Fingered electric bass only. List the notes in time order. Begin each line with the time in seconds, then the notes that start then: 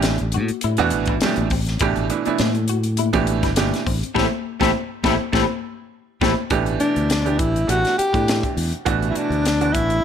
Already playing: A1
0.21 A1
0.36 A2
0.51 muted fingered electric bass stroke
0.64 A2
0.79 E2
0.93 A1
1.38 A1
1.81 A1
1.97 A1
2.27 muted fingered electric bass stroke
2.40 A2
3.14 A1
3.43 G1
3.87 A1
4.16 A1
4.61 A1
5.04 A1
5.33 A1
6.22 A1
6.51 A1
6.81 muted fingered electric bass stroke
6.97 D2
7.39 A1
7.69 A1
7.99 muted fingered electric bass stroke
8.14 A2
8.57 E2
8.86 A1
9.16 muted fingered electric bass stroke
9.30 D2
9.75 A1